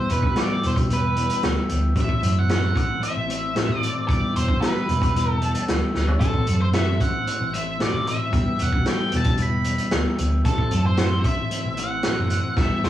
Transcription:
Already playing: clean electric guitar E3 G3, transistor combo organ E4 G4 B4 E5, lead electric guitar C5
0.09 picked electric bass E1, clean electric guitar G3 B3 E4, lead electric guitar B4, closed hi-hat
0.23 kick
0.35 clean electric guitar E3 G3 B3 E4, snare, closed hi-hat
0.41 lead electric guitar D5
0.63 picked electric bass E1, clean electric guitar G3 B3 E4, lead electric guitar C5, closed hi-hat
0.76 picked electric bass E1, kick, closed hi-hat
0.89 clean electric guitar E3 G3 B3 E4, closed hi-hat
0.93 lead electric guitar B4
1.15 clean electric guitar G3 B3 E4, closed hi-hat
1.29 closed hi-hat
1.43 picked electric bass D2, clean electric guitar E3 G3 B3 E4, snare, closed hi-hat
1.68 picked electric bass D2, clean electric guitar G3 B3 E4, closed hi-hat
1.95 picked electric bass A1, clean electric guitar A2 E3 A3 C4 E4, transistor combo organ A4 C5, kick, closed hi-hat
2.01 lead electric guitar E5
2.09 kick
2.21 picked electric bass F#2, clean electric guitar A3 C4 E4, closed hi-hat
2.39 lead electric guitar F#5
2.47 clean electric guitar A2 E3 A3 C4 E4, snare, closed hi-hat
2.73 picked electric bass A2, clean electric guitar A3 C4 E4, kick, closed hi-hat
2.78 lead electric guitar F#5
3.00 clean electric guitar E3 A3 C4 E4, lead electric guitar E5, closed hi-hat
3.16 picked electric bass A1
3.26 clean electric guitar A3 C4 E4, closed hi-hat
3.54 clean electric guitar A2 E3 A3 C4 E4, snare, closed hi-hat
3.69 picked electric bass A2
3.79 clean electric guitar A3 C4 E4, lead electric guitar D5, closed hi-hat
4.07 picked electric bass E1, clean electric guitar E3 G3 B3 E4, transistor combo organ G4 B4 E5, lead electric guitar D5, kick, closed hi-hat
4.33 picked electric bass E1, clean electric guitar G3 B3 E4, lead electric guitar C5, closed hi-hat
4.48 kick
4.59 clean electric guitar E3 G3 B3 E4, lead electric guitar B4, snare, closed hi-hat
4.86 picked electric bass E1, clean electric guitar G3 B3 E4, closed hi-hat
5.02 picked electric bass E1, kick, closed hi-hat
5.13 clean electric guitar E3 G3 B3 E4, closed hi-hat
5.32 lead electric guitar A4
5.39 clean electric guitar G3 B3 E4, closed hi-hat
5.54 closed hi-hat
5.67 picked electric bass D2, clean electric guitar E3 G3 B3 E4, snare, closed hi-hat
5.94 picked electric bass D2, clean electric guitar G3 B3 E4, snare
6.08 floor tom
6.20 picked electric bass A1, clean electric guitar A2 E3 A3 C4 E4, lead electric guitar A4, transistor combo organ A4 C5, kick, closed hi-hat
6.34 kick
6.45 picked electric bass F#2, clean electric guitar A3 C4 E4, closed hi-hat
6.62 lead electric guitar C5
6.73 clean electric guitar A2 E3 A3 C4 E4, lead electric guitar E5, snare, closed hi-hat
6.99 picked electric bass A2, clean electric guitar A3 C4 E4, lead electric guitar F#5, kick, closed hi-hat
7.26 clean electric guitar E3 A3 C4 E4, closed hi-hat
7.41 picked electric bass A1
7.52 clean electric guitar A3 C4 E4, lead electric guitar E5, closed hi-hat
7.79 clean electric guitar A2 E3 A3 C4 E4, lead electric guitar D5, snare, closed hi-hat
7.93 picked electric bass A2
8.04 clean electric guitar A3 C4 E4, lead electric guitar E5, closed hi-hat
8.30 picked electric bass E1, clean electric guitar E3 G3 B3 E4, transistor combo organ G4 B4, kick, closed hi-hat
8.58 picked electric bass E1, clean electric guitar G3 B3 E4, closed hi-hat
8.62 lead electric guitar F#5
8.73 kick
8.83 clean electric guitar E3 G3 B3 E4, snare, closed hi-hat
8.88 lead electric guitar G5
9.10 picked electric bass E1, clean electric guitar G3 B3 E4, closed hi-hat
9.17 lead electric guitar A5
9.24 picked electric bass E1, kick, closed hi-hat
9.37 clean electric guitar E3 G3 B3 E4, closed hi-hat
9.42 lead electric guitar B5
9.64 clean electric guitar G3 B3 E4, closed hi-hat
9.78 closed hi-hat
9.91 picked electric bass D2, clean electric guitar E3 G3 B3 E4, snare, closed hi-hat
10.16 picked electric bass D2, clean electric guitar G3 B3 E4, closed hi-hat
10.43 picked electric bass A1, clean electric guitar A2 E3 A3 C4 E4, transistor combo organ E4 A4 C5, lead electric guitar A4, kick, closed hi-hat
10.58 kick
10.70 picked electric bass F#2, clean electric guitar A3 C4 E4, closed hi-hat
10.86 lead electric guitar C5
10.97 clean electric guitar A2 E3 A3 C4 E4, snare, closed hi-hat
11.24 picked electric bass A2, clean electric guitar A3 C4 E4, lead electric guitar E5, kick, closed hi-hat
11.50 clean electric guitar E3 A3 C4 E4, closed hi-hat
11.65 picked electric bass A1
11.76 clean electric guitar A3 C4 E4, lead electric guitar F#5, closed hi-hat
12.03 clean electric guitar A2 E3 A3 C4 E4, snare, closed hi-hat
12.18 picked electric bass F#1
12.30 clean electric guitar A3 C4 E4, closed hi-hat
12.56 picked electric bass E1, clean electric guitar E3 G3 B3 E4, transistor combo organ G4 B5, lead electric guitar E5, kick, snare
12.83 picked electric bass E1, clean electric guitar E4, lead electric guitar C5, snare

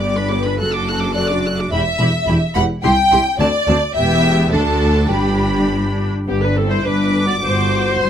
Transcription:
Already playing: double bass section G1, cello section G2, violin section D5
0.02 viola section B3 G4, violin section D6
0.15 viola section D4 B4, violin section B5
0.30 viola section B3 G4, violin section B4 D6
0.44 viola section D4 B4, violin section B5
0.59 double bass section F#1, cello section F#2, viola section F#4 A4, violin section A4 F#6
0.72 viola section D4 F#4, violin section D6
0.86 viola section F#4 A4, violin section F#6
1.00 viola section D4 F#4, violin section D6
1.15 viola section F#4 A4, violin section D5 F#6
1.29 viola section D4 F#4, violin section D6
1.44 viola section F#4 A4, violin section F#6
1.57 viola section D4 F#4, violin section D6
1.71 double bass section E1, cello section E2, viola section E4 G4, violin section E5 B5
1.99 double bass section E1, cello section E2, viola section E4 G4, violin section B5
2.26 double bass section E1, cello section E2, viola section E4 G4, violin section B5
2.55 double bass section E1, cello section E2, viola section E4 G4, violin section F#5 B5
2.83 double bass section C2, cello section C2, viola section E4 G4, violin section G5 C6
3.11 double bass section C2, cello section C2, viola section E4 G4, violin section C6
3.39 double bass section D2, cello section D2, viola section C4 F#4, violin section D5 A5
3.67 cello section D2, double bass section D2, viola section C4 F#4, violin section A5
3.95 double bass section E1, cello section E2, viola section B3 G4, violin section E5 G5
4.51 cello section D2, double bass section D2, viola section D4 F#4, violin section A4 A5
5.10 double bass section G1, cello section G2, viola section D4 G4, violin section G4 B5
6.28 double bass section G1, cello section G2, violin section B3, viola section G4
6.42 violin section D4, viola section B4
6.55 violin section C4, viola section A4
6.69 violin section E4, viola section C5
6.83 double bass section G1, cello section G2, violin section D4 D6, viola section B4
7.27 violin section F#4, viola section D5
7.41 double bass section G1, cello section G2, violin section F#4, viola section C5
7.99 double bass section G1, cello section G2, violin section C6

